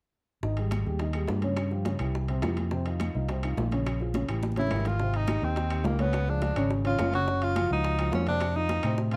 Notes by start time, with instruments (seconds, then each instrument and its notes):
0.43 fingered electric bass G#1, grand piano D#3 D#4 D#5, high bongo, high conga
0.57 grand piano G3 G4 G#4, high conga, high timbale
0.71 high bongo, high conga, high timbale, low timbale, claves
0.86 fingered electric bass D#2, grand piano G3 G4 G#4, high conga
0.99 grand piano D#3 D#4 D#5, high bongo, high conga, high timbale
1.13 grand piano G3 G4 G#4, high conga, high timbale, claves
1.28 fingered electric bass G2, high bongo, low bongo, high conga, low timbale
1.42 grand piano C#3 C#4 C#5, high conga, high timbale
1.57 high bongo, high timbale, claves
1.71 grand piano F3 F4 G4, high bongo, high conga
1.85 grand piano C#3 C#4 C#5, high bongo, high conga, high timbale, low timbale
1.99 fingered electric bass C2, grand piano E3 E4 G4, high bongo, high conga, high timbale, claves
2.15 high bongo, high conga
2.28 grand piano C3 C4 C5, high bongo, high conga, high timbale
2.42 fingered electric bass F2, grand piano E3 E4 G4, high bongo, low bongo, high conga, high timbale, low timbale, claves
2.57 high conga, high timbale
2.71 grand piano C3 C4 C5, high bongo, high conga
2.86 grand piano D#3 D#4 F4, high conga, high timbale
3.00 high bongo, high conga, high timbale, low timbale, claves
3.15 fingered electric bass C2, grand piano D#3 D#4 F4, high conga
3.29 grand piano C3 C4 C5, high bongo, high conga, high timbale
3.43 grand piano D#3 D#4 F4, high conga, high timbale, claves
3.57 fingered electric bass A#1, high bongo, low bongo, high conga, low timbale
3.71 grand piano C#3 C#4 C#5, high conga, high timbale
3.85 high bongo, high conga, high timbale, claves
4.00 grand piano F3 F4 G#4, high bongo, high conga
4.14 grand piano C#3 C#4 C#5, high bongo, high conga, high timbale, low timbale
4.28 fingered electric bass A1, grand piano E3 E4 G4, high bongo, high conga, high timbale, claves
4.43 high bongo, high conga
4.52 high conga
4.56 grand piano C#3 C#4 C#5, tenor saxophone E4, high bongo, high timbale
4.61 low conga
4.67 fingered electric bass G#1, grand piano E3, low bongo, high timbale, low timbale
4.71 grand piano E4 G4, claves
4.76 low bongo
4.80 low conga
4.85 tenor saxophone F4, low bongo, high timbale
4.90 low conga
4.99 grand piano C3 C4 C5, high bongo, high conga
5.14 tenor saxophone D#4, high conga, high timbale
5.27 grand piano D#3 D#4 G4, high bongo, high conga, high timbale, low timbale, claves
5.42 fingered electric bass D#2, grand piano D#3 D#4 G4, tenor saxophone C4, high conga
5.56 high bongo, high conga, high timbale
5.70 grand piano D#3 D#4 G4, high conga, high timbale, claves
5.84 fingered electric bass C#2, tenor saxophone A#3, high bongo, low bongo, high conga, low timbale
5.99 grand piano C#3 C#4 C#5, tenor saxophone B3, high conga, high timbale
6.13 high bongo, high conga, high timbale, claves
6.28 grand piano F3 F4 G#4, tenor saxophone D4, high bongo, high conga
6.42 high bongo, high conga, high timbale, low timbale
6.56 fingered electric bass G#1, grand piano C#3 C#4 C#5, high bongo, high timbale, claves
6.71 high bongo, high conga
6.84 grand piano C#3 C#4 C#5, tenor saxophone F4, high bongo, high conga, high timbale
6.99 fingered electric bass F#1, high bongo, low bongo, high conga, high timbale, low timbale, claves
7.13 grand piano C#3 C#4 C#5, tenor saxophone F#4, high conga, high timbale
7.27 grand piano C#3 C#4 C#5, high bongo, high conga
7.42 tenor saxophone F4, high conga, high timbale
7.56 grand piano F3 F4 F#4, high bongo, high conga, high timbale, low timbale, claves
7.70 fingered electric bass C#2, grand piano F3 F4 F#4, tenor saxophone D#4, high conga
7.84 high bongo, high conga, high timbale
7.99 grand piano F3 F4 F#4, high conga, high timbale, claves
8.12 fingered electric bass F2, tenor saxophone C#4, high bongo, low bongo, high conga, low timbale
8.27 grand piano C3 C4 C5, tenor saxophone D4, high conga, high timbale
8.40 high bongo, high conga, high timbale, claves
8.55 grand piano D#3 D#4 F4, tenor saxophone D#4, high bongo, high conga
8.69 high bongo, high conga, high timbale, low timbale
8.83 fingered electric bass A2, grand piano C3 C4 C5, high bongo, high timbale, claves
8.98 high bongo, high conga
9.11 grand piano C3 C4 C5, tenor saxophone F4, high bongo, high conga, high timbale